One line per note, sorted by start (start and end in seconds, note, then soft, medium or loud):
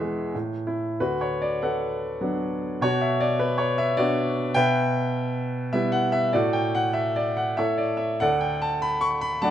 0.00 0.31 E2 medium
0.00 0.32 E3 soft
0.00 0.36 G#3 soft
0.00 0.31 G#4 medium
0.00 0.31 E5 medium
0.35 0.98 A2 soft
0.67 0.98 E4 soft
1.00 2.77 D2 soft
1.00 1.88 F#4 soft
1.00 1.21 B4 medium
1.21 1.42 C#5 medium
1.42 1.62 D5 medium
1.62 2.78 A4 soft
1.62 2.78 B4 soft
1.62 2.85 F#5 medium
2.21 2.79 F#3 soft
2.21 2.79 B3 soft
2.21 2.79 D4 soft
2.81 4.51 B2 medium
2.81 3.66 F#4 medium
2.81 3.00 C#5 medium
3.01 3.21 E5 medium
3.20 3.40 D5 medium
3.39 3.59 B4 medium
3.58 3.78 C#5 medium
3.78 3.98 E5 medium
3.97 4.54 B3 soft
3.97 4.54 D4 soft
3.97 4.52 F#4 medium
3.97 4.57 D5 medium
4.54 6.30 B2 medium
4.54 5.71 B4 medium
4.54 5.71 E5 medium
4.54 5.77 G5 loud
5.73 6.32 G3 soft
5.73 6.32 B3 soft
5.73 6.33 E4 soft
5.73 5.94 E5 medium
5.92 6.14 F#5 medium
6.12 6.32 E5 medium
6.33 7.55 A2 medium
6.33 7.24 F#4 medium
6.33 7.24 A4 soft
6.33 6.55 D5 medium
6.53 6.75 G5 medium
6.75 6.96 F#5 medium
6.93 7.14 E5 medium
7.16 7.38 D5 medium
7.37 7.57 F#5 medium
7.57 8.20 A2 soft
7.57 8.18 A4 soft
7.57 8.18 C#5 soft
7.57 7.80 E5 medium
7.78 8.01 D5 medium
7.97 8.19 E5 medium
8.20 9.51 D2 medium
8.20 9.10 A4 medium
8.20 9.10 D5 medium
8.20 8.43 F#5 medium
8.41 8.63 G5 medium
8.62 8.81 A5 medium
8.82 9.01 B5 medium
9.01 9.20 C#6 medium
9.21 9.42 B5 medium
9.42 9.51 F#3 soft
9.42 9.51 A3 soft
9.42 9.51 D4 soft
9.42 9.51 D5 medium
9.42 9.51 F#5 medium
9.42 9.51 A5 medium